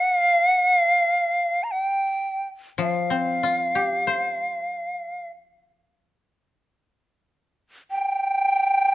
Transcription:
0, 0, Header, 1, 3, 480
1, 0, Start_track
1, 0, Tempo, 500000
1, 8586, End_track
2, 0, Start_track
2, 0, Title_t, "Shakuhachi"
2, 0, Program_c, 0, 77
2, 0, Note_on_c, 0, 78, 66
2, 198, Note_off_c, 0, 78, 0
2, 198, Note_on_c, 0, 77, 66
2, 458, Note_off_c, 0, 77, 0
2, 458, Note_on_c, 0, 78, 66
2, 698, Note_off_c, 0, 78, 0
2, 698, Note_on_c, 0, 77, 66
2, 1569, Note_on_c, 0, 82, 43
2, 1583, Note_off_c, 0, 77, 0
2, 1644, Note_on_c, 0, 79, 52
2, 1659, Note_off_c, 0, 82, 0
2, 2357, Note_off_c, 0, 79, 0
2, 2701, Note_on_c, 0, 77, 48
2, 5079, Note_off_c, 0, 77, 0
2, 7592, Note_on_c, 0, 79, 67
2, 8586, Note_off_c, 0, 79, 0
2, 8586, End_track
3, 0, Start_track
3, 0, Title_t, "Koto"
3, 0, Program_c, 1, 107
3, 2669, Note_on_c, 1, 53, 41
3, 2978, Note_on_c, 1, 60, 28
3, 3295, Note_on_c, 1, 65, 28
3, 3602, Note_on_c, 1, 67, 25
3, 3908, Note_on_c, 1, 72, 28
3, 5415, Note_off_c, 1, 60, 0
3, 5721, Note_off_c, 1, 65, 0
3, 5914, Note_off_c, 1, 53, 0
3, 6021, Note_off_c, 1, 67, 0
3, 6319, Note_off_c, 1, 72, 0
3, 8586, End_track
0, 0, End_of_file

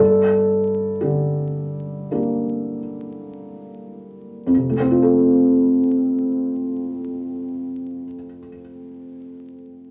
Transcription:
0, 0, Header, 1, 2, 480
1, 0, Start_track
1, 0, Key_signature, -1, "major"
1, 0, Tempo, 1041667
1, 472, Tempo, 1117318
1, 1432, Tempo, 1237113
1, 1906, Time_signature, 4, 2, 24, 8
1, 4011, End_track
2, 0, Start_track
2, 0, Title_t, "Felt piano"
2, 0, Program_c, 0, 0
2, 0, Control_c, 0, 64, 127
2, 0, Note_on_c, 0, 43, 45
2, 0, Note_on_c, 0, 69, 67
2, 3, Control_c, 0, 64, 0
2, 90, Control_c, 0, 64, 127
2, 465, Note_on_c, 0, 67, 46
2, 466, Note_off_c, 0, 69, 0
2, 473, Note_on_c, 0, 50, 37
2, 938, Note_off_c, 0, 67, 0
2, 939, Note_on_c, 0, 58, 31
2, 941, Note_on_c, 0, 62, 29
2, 944, Note_on_c, 0, 67, 35
2, 1232, Note_off_c, 0, 50, 0
2, 1887, Note_off_c, 0, 43, 0
2, 1889, Note_off_c, 0, 58, 0
2, 1890, Note_off_c, 0, 62, 0
2, 1891, Note_off_c, 0, 67, 0
2, 1900, Note_on_c, 0, 41, 48
2, 1916, Control_c, 0, 64, 0
2, 1943, Note_on_c, 0, 48, 39
2, 1989, Note_on_c, 0, 57, 38
2, 2009, Control_c, 0, 64, 127
2, 2031, Note_on_c, 0, 60, 44
2, 2073, Note_on_c, 0, 65, 43
2, 2116, Note_on_c, 0, 69, 40
2, 3282, Note_off_c, 0, 41, 0
2, 3325, Note_off_c, 0, 48, 0
2, 3372, Note_off_c, 0, 57, 0
2, 3413, Note_off_c, 0, 60, 0
2, 3455, Note_off_c, 0, 65, 0
2, 3498, Note_off_c, 0, 69, 0
2, 4011, End_track
0, 0, End_of_file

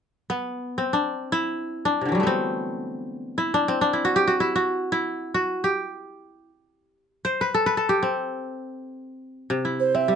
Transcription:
0, 0, Header, 1, 3, 480
1, 0, Start_track
1, 0, Tempo, 500000
1, 9748, End_track
2, 0, Start_track
2, 0, Title_t, "Ocarina"
2, 0, Program_c, 0, 79
2, 9409, Note_on_c, 0, 72, 77
2, 9554, Note_on_c, 0, 76, 91
2, 9568, Note_off_c, 0, 72, 0
2, 9748, Note_off_c, 0, 76, 0
2, 9748, End_track
3, 0, Start_track
3, 0, Title_t, "Kora"
3, 0, Program_c, 1, 46
3, 286, Note_on_c, 1, 59, 70
3, 747, Note_on_c, 1, 60, 65
3, 804, Note_off_c, 1, 59, 0
3, 894, Note_on_c, 1, 62, 75
3, 1269, Note_on_c, 1, 64, 87
3, 1775, Note_off_c, 1, 62, 0
3, 1778, Note_on_c, 1, 62, 77
3, 1934, Note_on_c, 1, 48, 31
3, 1972, Note_on_c, 1, 50, 31
3, 2002, Note_on_c, 1, 52, 34
3, 2033, Note_on_c, 1, 54, 40
3, 2062, Note_on_c, 1, 55, 45
3, 2078, Note_off_c, 1, 48, 0
3, 2110, Note_on_c, 1, 57, 44
3, 2142, Note_on_c, 1, 59, 48
3, 2172, Note_off_c, 1, 60, 0
3, 2176, Note_on_c, 1, 60, 66
3, 2773, Note_off_c, 1, 64, 0
3, 3242, Note_on_c, 1, 64, 75
3, 3391, Note_off_c, 1, 62, 0
3, 3399, Note_on_c, 1, 62, 76
3, 3532, Note_off_c, 1, 60, 0
3, 3536, Note_on_c, 1, 60, 74
3, 3593, Note_off_c, 1, 59, 0
3, 3657, Note_off_c, 1, 62, 0
3, 3661, Note_on_c, 1, 62, 78
3, 3772, Note_off_c, 1, 64, 0
3, 3776, Note_on_c, 1, 64, 69
3, 3885, Note_on_c, 1, 66, 84
3, 3992, Note_on_c, 1, 67, 90
3, 4027, Note_off_c, 1, 57, 0
3, 4049, Note_off_c, 1, 66, 0
3, 4104, Note_on_c, 1, 66, 79
3, 4161, Note_off_c, 1, 67, 0
3, 4219, Note_off_c, 1, 50, 0
3, 4222, Note_off_c, 1, 64, 0
3, 4226, Note_on_c, 1, 64, 69
3, 4248, Note_off_c, 1, 52, 0
3, 4280, Note_off_c, 1, 54, 0
3, 4308, Note_off_c, 1, 55, 0
3, 4369, Note_off_c, 1, 66, 0
3, 4373, Note_on_c, 1, 66, 86
3, 4720, Note_off_c, 1, 64, 0
3, 4723, Note_on_c, 1, 64, 74
3, 5127, Note_off_c, 1, 66, 0
3, 5131, Note_on_c, 1, 66, 74
3, 5264, Note_off_c, 1, 60, 0
3, 5273, Note_off_c, 1, 62, 0
3, 5413, Note_on_c, 1, 67, 72
3, 5471, Note_off_c, 1, 66, 0
3, 6228, Note_off_c, 1, 64, 0
3, 6769, Note_off_c, 1, 67, 0
3, 6957, Note_on_c, 1, 72, 80
3, 7114, Note_on_c, 1, 71, 75
3, 7172, Note_off_c, 1, 72, 0
3, 7243, Note_on_c, 1, 69, 78
3, 7353, Note_off_c, 1, 71, 0
3, 7356, Note_on_c, 1, 71, 74
3, 7457, Note_off_c, 1, 69, 0
3, 7461, Note_on_c, 1, 69, 67
3, 7576, Note_on_c, 1, 67, 75
3, 7705, Note_on_c, 1, 60, 61
3, 7762, Note_off_c, 1, 71, 0
3, 8726, Note_off_c, 1, 69, 0
3, 8932, Note_off_c, 1, 67, 0
3, 9120, Note_on_c, 1, 48, 69
3, 9262, Note_on_c, 1, 64, 55
3, 9433, Note_off_c, 1, 60, 0
3, 9548, Note_on_c, 1, 60, 57
3, 9679, Note_on_c, 1, 55, 66
3, 9748, Note_off_c, 1, 48, 0
3, 9748, Note_off_c, 1, 55, 0
3, 9748, Note_off_c, 1, 60, 0
3, 9748, Note_off_c, 1, 64, 0
3, 9748, End_track
0, 0, End_of_file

